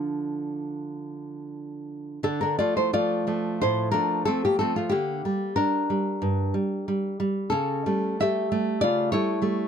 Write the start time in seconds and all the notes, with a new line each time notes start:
Already playing: D3 F3 D4 D5
2.23 D3 D4 A4
2.41 D4 A#4
2.59 F3 A3 F4 D5
2.77 E4 C5
2.93 F3 A3 F4 D5
3.27 F3 A3
3.62 A2 E4 C5
3.92 F3 A3 D4 A#4
4.25 F3 A3 C4 A4
4.45 A#3 G4
4.59 F3 A3 C4 A4
4.76 A3 F4
4.89 D3 A#3 G4
5.25 G3
5.56 G3 D4 A#4
5.90 G3
6.22 G2
6.54 G3
6.88 G3
7.20 G3
7.50 C#3 C#4 A4
7.86 G3 A3
8.20 G3 A3 G4 E5
8.52 G3 A3
8.81 C#3 F4 D5
9.12 G3 A3 E4 C#5
9.42 G3 A3